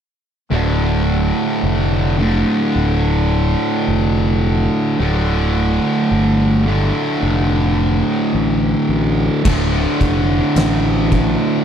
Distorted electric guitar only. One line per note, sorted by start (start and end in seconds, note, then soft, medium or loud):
0.50 2.21 D2 medium
0.50 2.16 A2 medium
0.50 2.18 D3 loud
2.19 4.98 D2 medium
2.19 4.96 A2 medium
2.19 5.01 D3 medium
4.99 6.63 D2 loud
4.99 6.64 A2 loud
4.99 6.64 D3 loud
6.66 9.43 D2 medium
6.66 9.42 A2 medium
6.66 9.41 D3 medium
9.44 11.64 D2 loud
9.44 11.64 A2 loud
9.44 11.64 D3 loud